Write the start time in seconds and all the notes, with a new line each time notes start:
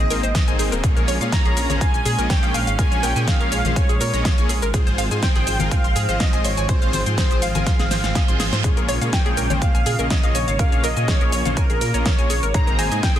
Already playing: G#3 A#3 C4 D#5
0.10 G#1 A#3 C4 D#4 G#4 A#4 C5, open hi-hat, shaker
0.23 G#1 C5, closed hi-hat, shaker
0.35 D#5, kick, snare, closed hi-hat, high woodblock, shaker
0.48 G#1 A#3 C4 D#4 G#4 C5 G#5, closed hi-hat, shaker
0.59 G#1 G#4, open hi-hat, shaker
0.72 D#1 A#4, closed hi-hat, shaker
0.84 A#3 C#4 F4 G#4 C#5, kick, closed hi-hat, low conga, shaker
0.96 A#1 A#4, closed hi-hat, shaker
1.08 A#1 C#5, open hi-hat, shaker
1.21 A#2 A#3 C#4 F4 G#4 C#5 F5, closed hi-hat, shaker
1.32 G#5 A#5, kick, snare, closed hi-hat, shaker
1.45 A#1 G#4, closed hi-hat, high woodblock
1.57 A#1 A#4, open hi-hat, shaker
1.70 A#1 A#3 C#4 F4 G#4 C5 C#5, closed hi-hat, high conga, shaker
1.81 F5 G#5, kick, closed hi-hat, shaker
1.94 A#1 G#5, closed hi-hat, shaker
2.05 A#2 G#4, open hi-hat, shaker
2.18 A#1 A#3 C#4 F4 G#4 A#4 D#5, closed hi-hat, shaker
2.30 C#5 G5, kick, snare, closed hi-hat, shaker
2.43 A#1 A#3 C#4 F4 G#4 C#5 F5, closed hi-hat, high woodblock, shaker
2.54 A#1 F5 G#5, open hi-hat, shaker
2.67 G#1 F5, closed hi-hat, shaker
2.79 A#3 C#4 F4 G#4 A#4 C#5 G#5, kick, closed hi-hat, low conga, shaker
2.92 A#1 C#5, closed hi-hat, shaker
3.03 A#1 A#4 G5, open hi-hat, shaker
3.16 A#2 A#3 C#4 F4 G#4 C#5 G#5, closed hi-hat, shaker
3.27 G#4 F5, kick, snare, closed hi-hat, shaker
3.40 A#1 A#4, closed hi-hat, high woodblock
3.52 A#1 C#5, open hi-hat, shaker
3.65 A#1 A#3 C#4 F4 G#4 C5 F5, closed hi-hat, high conga, shaker
3.76 C#5 G#5, kick, closed hi-hat, shaker
3.89 A#1 G#4, closed hi-hat, shaker
4.00 A#2 A#4 C#5, open hi-hat, shaker
4.14 A#1 A#3 C#4 F4 G#4 C#5 D#5, closed hi-hat, shaker
4.25 F5, kick, snare, closed hi-hat, high woodblock, shaker
4.38 A#1 A#3 C#4 F4 G#4 C#5 G#5, closed hi-hat, shaker
4.49 A#1 G#4, open hi-hat, shaker
4.62 G#1 A#4, closed hi-hat, shaker
4.74 F3 C4 F4 G#4 C5, kick, closed hi-hat, low conga, shaker
4.87 G#1 C5, closed hi-hat, shaker
4.98 G#1 F5, open hi-hat, shaker
5.11 G#2 F4 G#4 C5 G#5, closed hi-hat, shaker
5.23 G5 C6, kick, snare, closed hi-hat, shaker
5.35 G#1 G#4, closed hi-hat, high woodblock
5.47 G#1 C5, open hi-hat, shaker
5.59 G#1 F4 G#4 A#4 F5, closed hi-hat, high conga, shaker
5.71 F5 G#5, kick, closed hi-hat, shaker
5.84 G#1 C6, closed hi-hat, shaker
5.96 G#2 G#4, open hi-hat, shaker
6.09 G#1 F4 G#4 C5 D#5, closed hi-hat, shaker
6.20 D#5 F5, kick, snare, closed hi-hat, shaker
6.33 G#1 F4 G#4 C5 G#5, closed hi-hat, high woodblock, shaker
6.45 G#1 C#5 C6, open hi-hat, shaker
6.57 G#1 G#5, closed hi-hat, shaker
6.68 F4 G#4 C5, kick, closed hi-hat, low conga, shaker
6.82 G#1 F5, closed hi-hat, shaker
6.93 G#1 C5, open hi-hat, high conga, shaker
7.06 G#2 F4 G#4 C5 C6, closed hi-hat, shaker
7.18 G#4 C5, kick, snare, closed hi-hat, shaker
7.31 G#1 C5, closed hi-hat, high woodblock, shaker
7.42 G#1 F5, open hi-hat, shaker
7.55 G#1 F4 G#4 A#4 G#5, closed hi-hat, high conga, shaker
7.67 F5 C6, kick, snare, closed hi-hat, reverse cymbal, shaker
7.79 G#1 G#4, snare, closed hi-hat, high conga, shaker
7.91 G#1 F4 G#4 C5, snare, open hi-hat, shaker
8.04 G#1 F5, snare, closed hi-hat, shaker
8.15 G#5, kick, snare, closed hi-hat, high woodblock, shaker
8.28 G#1 F4 G#4 C5 C6, closed hi-hat, shaker
8.40 G#1 G#4, snare, open hi-hat, shaker
8.53 G#2 C5, snare, closed hi-hat, shaker
8.64 C#3 G#3 A#3 C#4 F4 G#4 C#5, kick, closed hi-hat, low conga, shaker
8.77 A#1 A#4, closed hi-hat, shaker
8.88 A#1 C#5, open hi-hat, shaker
9.01 A#2 A#3 C#4 F4 G#4 C#5 F5, closed hi-hat, shaker
9.13 G5 G#5, kick, snare, closed hi-hat, shaker
9.26 A#1 G#4, closed hi-hat, high woodblock
9.37 A#1 A#4, open hi-hat, shaker
9.50 A#1 A#3 C#4 F4 G#4 C5 C#5, closed hi-hat, high conga, shaker
9.62 F5, kick, closed hi-hat, shaker
9.75 A#1 G#5, closed hi-hat, shaker
9.86 A#2 G#4, open hi-hat, shaker
9.99 A#1 A#3 C#4 F4 G#4 A#4 D#5, closed hi-hat, shaker
10.10 C#5 D#5, kick, snare, closed hi-hat, shaker
10.23 A#1 A#3 C#4 F4 G#4 C#5 F5, closed hi-hat, high woodblock, shaker
10.35 A#1 C#5 G#5, open hi-hat, shaker
10.48 G#1 F5, closed hi-hat, shaker
10.59 A#3 C#4 F4 G#4 A#4 C#5 F5, kick, closed hi-hat, low conga, shaker
10.72 A#1 C#5, closed hi-hat, shaker
10.83 A#1 A#4 D#5, open hi-hat, shaker
10.97 A#2 A#3 C#4 F4 G#4 C#5 G#5, closed hi-hat, shaker
11.08 G#4 C#5, kick, snare, closed hi-hat, shaker
11.21 A#1 A#4, closed hi-hat, high woodblock
11.32 A#1 C#5, open hi-hat, shaker
11.45 A#1 A#3 C#4 F4 G#4 C5 F5, closed hi-hat, high conga, shaker
11.57 A#4 G#5, kick, closed hi-hat, shaker
11.70 A#1 G#4, closed hi-hat, shaker
11.81 A#2 A#4, open hi-hat, shaker
11.94 A#1 A#3 C#4 F4 G#4 C#5 D#5, closed hi-hat, shaker
12.05 C#5 F5, kick, snare, closed hi-hat, high woodblock, shaker
12.18 A#1 A#3 C#4 F4 G#4 C#5 G#5, closed hi-hat, shaker
12.30 A#1 G#4, open hi-hat, shaker
12.43 G#1 A#4, closed hi-hat, shaker
12.54 C3 G#3 A#3 C4 D#4 G#4 C5 A#5, kick, closed hi-hat, low conga, shaker
12.67 G#1 A#4, closed hi-hat, shaker
12.79 G#1 C5 G#5, open hi-hat, shaker
12.92 G#2 A#3 C4 D#4 G#4 C5 D#5, closed hi-hat, shaker
13.03 G5 G#5, kick, snare, closed hi-hat, shaker
13.16 G#1 G#4, closed hi-hat, high woodblock